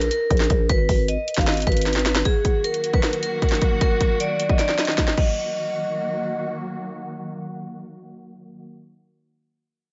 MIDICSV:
0, 0, Header, 1, 5, 480
1, 0, Start_track
1, 0, Key_signature, -6, "minor"
1, 0, Tempo, 389610
1, 856, Time_signature, 4, 2, 24, 8
1, 12224, End_track
2, 0, Start_track
2, 0, Title_t, "Vibraphone"
2, 0, Program_c, 0, 11
2, 137, Note_on_c, 0, 70, 92
2, 814, Note_off_c, 0, 70, 0
2, 857, Note_on_c, 0, 71, 102
2, 1308, Note_off_c, 0, 71, 0
2, 1336, Note_on_c, 0, 75, 81
2, 1674, Note_off_c, 0, 75, 0
2, 1697, Note_on_c, 0, 77, 79
2, 1792, Note_off_c, 0, 77, 0
2, 1815, Note_on_c, 0, 75, 85
2, 2006, Note_off_c, 0, 75, 0
2, 2056, Note_on_c, 0, 71, 85
2, 2733, Note_off_c, 0, 71, 0
2, 2777, Note_on_c, 0, 68, 95
2, 3228, Note_off_c, 0, 68, 0
2, 3257, Note_on_c, 0, 70, 88
2, 3595, Note_off_c, 0, 70, 0
2, 3615, Note_on_c, 0, 71, 87
2, 3711, Note_off_c, 0, 71, 0
2, 3736, Note_on_c, 0, 70, 79
2, 3926, Note_off_c, 0, 70, 0
2, 3976, Note_on_c, 0, 70, 79
2, 4653, Note_off_c, 0, 70, 0
2, 4697, Note_on_c, 0, 70, 95
2, 5148, Note_off_c, 0, 70, 0
2, 5177, Note_on_c, 0, 74, 84
2, 5515, Note_off_c, 0, 74, 0
2, 5537, Note_on_c, 0, 75, 79
2, 5632, Note_off_c, 0, 75, 0
2, 5655, Note_on_c, 0, 74, 87
2, 5846, Note_off_c, 0, 74, 0
2, 5896, Note_on_c, 0, 75, 81
2, 6348, Note_off_c, 0, 75, 0
2, 6375, Note_on_c, 0, 75, 81
2, 8007, Note_off_c, 0, 75, 0
2, 12224, End_track
3, 0, Start_track
3, 0, Title_t, "String section"
3, 0, Program_c, 1, 48
3, 2776, Note_on_c, 1, 51, 78
3, 2776, Note_on_c, 1, 54, 72
3, 2776, Note_on_c, 1, 58, 73
3, 2776, Note_on_c, 1, 66, 90
3, 6340, Note_off_c, 1, 51, 0
3, 6340, Note_off_c, 1, 54, 0
3, 6340, Note_off_c, 1, 58, 0
3, 6340, Note_off_c, 1, 66, 0
3, 6377, Note_on_c, 1, 51, 75
3, 6378, Note_on_c, 1, 54, 67
3, 6378, Note_on_c, 1, 58, 69
3, 6378, Note_on_c, 1, 66, 83
3, 10650, Note_off_c, 1, 51, 0
3, 10651, Note_off_c, 1, 54, 0
3, 10651, Note_off_c, 1, 58, 0
3, 10651, Note_off_c, 1, 66, 0
3, 12224, End_track
4, 0, Start_track
4, 0, Title_t, "808-style bass"
4, 0, Program_c, 2, 38
4, 376, Note_on_c, 2, 34, 106
4, 607, Note_off_c, 2, 34, 0
4, 617, Note_on_c, 2, 34, 101
4, 847, Note_off_c, 2, 34, 0
4, 856, Note_on_c, 2, 32, 116
4, 1087, Note_off_c, 2, 32, 0
4, 1096, Note_on_c, 2, 32, 103
4, 1442, Note_off_c, 2, 32, 0
4, 1697, Note_on_c, 2, 32, 105
4, 2042, Note_off_c, 2, 32, 0
4, 2056, Note_on_c, 2, 32, 107
4, 2747, Note_off_c, 2, 32, 0
4, 12224, End_track
5, 0, Start_track
5, 0, Title_t, "Drums"
5, 16, Note_on_c, 9, 42, 87
5, 136, Note_off_c, 9, 42, 0
5, 136, Note_on_c, 9, 42, 85
5, 259, Note_off_c, 9, 42, 0
5, 376, Note_on_c, 9, 36, 97
5, 376, Note_on_c, 9, 42, 49
5, 456, Note_off_c, 9, 42, 0
5, 456, Note_on_c, 9, 42, 65
5, 496, Note_on_c, 9, 38, 65
5, 499, Note_off_c, 9, 36, 0
5, 536, Note_off_c, 9, 42, 0
5, 536, Note_on_c, 9, 42, 82
5, 616, Note_off_c, 9, 42, 0
5, 616, Note_on_c, 9, 42, 65
5, 617, Note_on_c, 9, 36, 94
5, 620, Note_off_c, 9, 38, 0
5, 739, Note_off_c, 9, 42, 0
5, 740, Note_off_c, 9, 36, 0
5, 855, Note_on_c, 9, 42, 77
5, 856, Note_on_c, 9, 36, 117
5, 979, Note_off_c, 9, 36, 0
5, 979, Note_off_c, 9, 42, 0
5, 1096, Note_on_c, 9, 36, 94
5, 1096, Note_on_c, 9, 46, 74
5, 1219, Note_off_c, 9, 36, 0
5, 1219, Note_off_c, 9, 46, 0
5, 1336, Note_on_c, 9, 42, 83
5, 1459, Note_off_c, 9, 42, 0
5, 1575, Note_on_c, 9, 42, 90
5, 1655, Note_off_c, 9, 42, 0
5, 1655, Note_on_c, 9, 42, 81
5, 1694, Note_on_c, 9, 38, 66
5, 1697, Note_on_c, 9, 36, 101
5, 1736, Note_off_c, 9, 42, 0
5, 1736, Note_on_c, 9, 42, 73
5, 1816, Note_off_c, 9, 38, 0
5, 1816, Note_off_c, 9, 42, 0
5, 1816, Note_on_c, 9, 38, 113
5, 1816, Note_on_c, 9, 42, 65
5, 1820, Note_off_c, 9, 36, 0
5, 1875, Note_off_c, 9, 42, 0
5, 1875, Note_on_c, 9, 42, 58
5, 1895, Note_off_c, 9, 42, 0
5, 1895, Note_on_c, 9, 42, 57
5, 1935, Note_off_c, 9, 42, 0
5, 1935, Note_on_c, 9, 42, 71
5, 1939, Note_off_c, 9, 38, 0
5, 1975, Note_off_c, 9, 42, 0
5, 1975, Note_on_c, 9, 42, 53
5, 1995, Note_off_c, 9, 42, 0
5, 1995, Note_on_c, 9, 42, 85
5, 2055, Note_on_c, 9, 36, 99
5, 2056, Note_off_c, 9, 42, 0
5, 2056, Note_on_c, 9, 42, 46
5, 2116, Note_off_c, 9, 42, 0
5, 2116, Note_on_c, 9, 42, 58
5, 2176, Note_off_c, 9, 42, 0
5, 2176, Note_on_c, 9, 42, 69
5, 2179, Note_off_c, 9, 36, 0
5, 2236, Note_off_c, 9, 42, 0
5, 2236, Note_on_c, 9, 42, 81
5, 2296, Note_off_c, 9, 42, 0
5, 2296, Note_on_c, 9, 38, 58
5, 2296, Note_on_c, 9, 42, 48
5, 2376, Note_off_c, 9, 42, 0
5, 2376, Note_on_c, 9, 42, 65
5, 2415, Note_off_c, 9, 38, 0
5, 2415, Note_on_c, 9, 38, 65
5, 2456, Note_off_c, 9, 42, 0
5, 2456, Note_on_c, 9, 42, 78
5, 2536, Note_off_c, 9, 38, 0
5, 2536, Note_off_c, 9, 42, 0
5, 2536, Note_on_c, 9, 38, 92
5, 2536, Note_on_c, 9, 42, 55
5, 2656, Note_off_c, 9, 38, 0
5, 2656, Note_off_c, 9, 42, 0
5, 2656, Note_on_c, 9, 38, 98
5, 2656, Note_on_c, 9, 42, 59
5, 2775, Note_off_c, 9, 42, 0
5, 2775, Note_on_c, 9, 42, 72
5, 2776, Note_on_c, 9, 36, 116
5, 2779, Note_off_c, 9, 38, 0
5, 2899, Note_off_c, 9, 36, 0
5, 2899, Note_off_c, 9, 42, 0
5, 3015, Note_on_c, 9, 42, 76
5, 3016, Note_on_c, 9, 36, 94
5, 3139, Note_off_c, 9, 36, 0
5, 3139, Note_off_c, 9, 42, 0
5, 3256, Note_on_c, 9, 42, 61
5, 3376, Note_off_c, 9, 42, 0
5, 3376, Note_on_c, 9, 42, 64
5, 3496, Note_off_c, 9, 42, 0
5, 3496, Note_on_c, 9, 42, 86
5, 3617, Note_on_c, 9, 36, 103
5, 3619, Note_off_c, 9, 42, 0
5, 3736, Note_on_c, 9, 38, 114
5, 3736, Note_on_c, 9, 42, 48
5, 3740, Note_off_c, 9, 36, 0
5, 3856, Note_off_c, 9, 42, 0
5, 3856, Note_on_c, 9, 42, 84
5, 3859, Note_off_c, 9, 38, 0
5, 3976, Note_off_c, 9, 42, 0
5, 3976, Note_on_c, 9, 42, 83
5, 4099, Note_off_c, 9, 42, 0
5, 4216, Note_on_c, 9, 36, 93
5, 4216, Note_on_c, 9, 42, 48
5, 4295, Note_off_c, 9, 42, 0
5, 4295, Note_on_c, 9, 42, 61
5, 4335, Note_on_c, 9, 38, 61
5, 4339, Note_off_c, 9, 36, 0
5, 4375, Note_off_c, 9, 42, 0
5, 4375, Note_on_c, 9, 42, 82
5, 4455, Note_off_c, 9, 42, 0
5, 4455, Note_on_c, 9, 42, 65
5, 4457, Note_on_c, 9, 36, 90
5, 4458, Note_off_c, 9, 38, 0
5, 4578, Note_off_c, 9, 42, 0
5, 4580, Note_off_c, 9, 36, 0
5, 4695, Note_on_c, 9, 42, 73
5, 4696, Note_on_c, 9, 36, 116
5, 4818, Note_off_c, 9, 42, 0
5, 4819, Note_off_c, 9, 36, 0
5, 4936, Note_on_c, 9, 36, 91
5, 4936, Note_on_c, 9, 42, 74
5, 5059, Note_off_c, 9, 36, 0
5, 5059, Note_off_c, 9, 42, 0
5, 5175, Note_on_c, 9, 42, 81
5, 5298, Note_off_c, 9, 42, 0
5, 5416, Note_on_c, 9, 42, 85
5, 5537, Note_on_c, 9, 36, 95
5, 5539, Note_off_c, 9, 42, 0
5, 5656, Note_on_c, 9, 38, 53
5, 5656, Note_on_c, 9, 42, 75
5, 5660, Note_off_c, 9, 36, 0
5, 5776, Note_off_c, 9, 38, 0
5, 5776, Note_on_c, 9, 38, 53
5, 5779, Note_off_c, 9, 42, 0
5, 5896, Note_off_c, 9, 38, 0
5, 5896, Note_on_c, 9, 38, 70
5, 5896, Note_on_c, 9, 42, 64
5, 5976, Note_off_c, 9, 42, 0
5, 5976, Note_on_c, 9, 42, 64
5, 6017, Note_off_c, 9, 38, 0
5, 6017, Note_on_c, 9, 38, 60
5, 6057, Note_off_c, 9, 42, 0
5, 6057, Note_on_c, 9, 42, 63
5, 6136, Note_off_c, 9, 38, 0
5, 6136, Note_off_c, 9, 42, 0
5, 6136, Note_on_c, 9, 36, 94
5, 6136, Note_on_c, 9, 38, 81
5, 6136, Note_on_c, 9, 42, 76
5, 6256, Note_off_c, 9, 38, 0
5, 6256, Note_on_c, 9, 38, 73
5, 6259, Note_off_c, 9, 36, 0
5, 6259, Note_off_c, 9, 42, 0
5, 6376, Note_on_c, 9, 36, 104
5, 6376, Note_on_c, 9, 49, 88
5, 6379, Note_off_c, 9, 38, 0
5, 6499, Note_off_c, 9, 49, 0
5, 6500, Note_off_c, 9, 36, 0
5, 12224, End_track
0, 0, End_of_file